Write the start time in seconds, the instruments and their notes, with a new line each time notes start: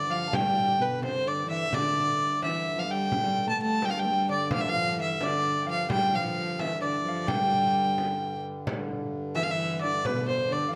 Already playing: harmonium G2 D3, harp B4 D5 E5, fiddle D5
0.09 viola da gamba F3, harp F5, fiddle F5
0.27 harp A5
0.32 viola da gamba G3, harp G5, fiddle G5, frame drum
0.57 frame drum
0.80 viola da gamba B2, harp B4, fiddle B4, frame drum
1.01 viola da gamba C3, harp C5, fiddle C5, frame drum
1.26 viola da gamba D3, harp D5, fiddle D5
1.48 viola da gamba E3, harp E5, fiddle E5
1.71 viola da gamba D3, fiddle D5, harp D5, frame drum
2.43 viola da gamba E3, fiddle E5, harp E5, frame drum
2.77 viola da gamba F3, fiddle F5
2.88 viola da gamba G3, harp G5, fiddle G5
3.12 harmonium G2 D3, frame drum
3.23 viola da gamba G3, harp G5
3.36 frame drum
3.47 viola da gamba A3, harp A5, fiddle A5
3.59 viola da gamba A3, fiddle A5, frame drum
3.82 viola da gamba G3, harp G5, fiddle G5, frame drum
3.90 fiddle F5
3.96 viola da gamba G3, harp G5, fiddle G5
4.05 viola da gamba A3
4.11 viola da gamba G3
4.29 viola da gamba D3, harp D5, fiddle D5
4.51 viola da gamba F3, harp F5, fiddle F5, frame drum
4.60 fiddle E5
4.65 viola da gamba F3, harp F5, fiddle F5
4.74 frame drum
4.97 viola da gamba E3, harp E5, frame drum
5.01 fiddle E5
5.21 viola da gamba D3, harp D5, fiddle D5, frame drum
5.61 harp G5
5.67 viola da gamba F3, harp F5
5.71 fiddle F5
5.90 viola da gamba G3, harp G5, fiddle G5, frame drum
6.13 viola da gamba F3, harp F5, fiddle F5, frame drum
6.37 frame drum
6.59 viola da gamba E3, fiddle E5, harp E5, frame drum
6.81 viola da gamba D3, fiddle D5, harp D5
7.05 viola da gamba F3, harp F5
7.27 viola da gamba G3, fiddle G5, harp G5, frame drum
7.75 frame drum
7.98 frame drum
8.67 harmonium G2 D3, frame drum
9.35 viola da gamba E3, fiddle E5, harp E5, frame drum
9.43 fiddle F5
9.49 viola da gamba E3, harp E5, fiddle E5
9.81 viola da gamba D3, fiddle D5, harp D5
10.05 viola da gamba B2, harp B4, fiddle B4, frame drum
10.28 fiddle C5, harp C5
10.50 viola da gamba D3, fiddle D5
10.69 harp F5